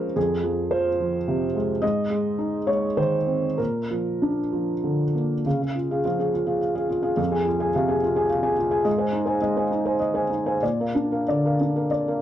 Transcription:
Already playing: C#3 F3 G#3 F4 A#4 C5 C#5
0.16 F2 G#4
0.43 F3
0.71 F4 C5
1.00 F3
1.28 C3
1.55 G#3
1.82 G#2 D#5
2.10 G#3
2.38 D#4
2.67 G#3 C#5
2.97 D#3 C5
3.27 C4
3.58 A#2 A#4
3.91 F3
4.22 D4
4.53 F3
4.84 D3
5.15 A#3
5.46 C#3 F5
5.62 G#4 F5
5.76 F4
5.91 G#4 F5
6.05 F3 F5
6.19 G#4 F5
6.34 F4
6.46 G#4 F5
6.61 F5
6.75 G#4 F5
6.89 F4
7.03 G#4 F5
7.17 F2 F5
7.31 G#4 G#5
7.46 F4
7.60 G#4 G#5
7.75 C3 F5
7.88 G#4 G#5
8.03 F4
8.16 G#4 G#5
8.30 F5
8.43 G#4 G#5
8.58 F4
8.71 G#4 G#5
8.85 G#2 D#5
8.98 C5 G#5
9.13 D#4
9.26 C5 G#5
9.41 G#3 D#5
9.57 C5 G#5
9.71 D#4
9.85 C5 G#5
10.00 D#5
10.14 C5 G#5
10.30 D#4
10.46 C5 G#5
10.62 A#2 D5
10.80 A#4 F5
10.95 D4
11.12 A#4 F5
11.28 D3 D5
11.45 A#4 F5
11.60 D4
11.76 A#4 F5
11.91 D5
12.08 A#4 F5

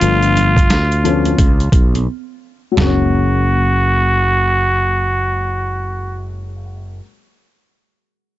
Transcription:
Already playing: F4
0.01 G1 F3 A3 B3 D4, closed hi-hat, maracas
0.22 closed hi-hat, maracas
0.36 closed hi-hat, low conga, maracas
0.57 kick, closed hi-hat, maracas
0.70 D2, snare, closed hi-hat, maracas
0.92 closed hi-hat, maracas
1.04 F3 A3 B3 C#4, closed hi-hat, low conga, maracas
1.25 closed hi-hat, high conga, maracas
1.39 C#2, kick, closed hi-hat, maracas
1.60 closed hi-hat, maracas
1.72 B1, kick, closed hi-hat, maracas
1.95 closed hi-hat, high conga, maracas
2.72 F#3
2.76 F#1 G#3 A#3 F#4, snare, floor tom, high conga
2.83 C#4

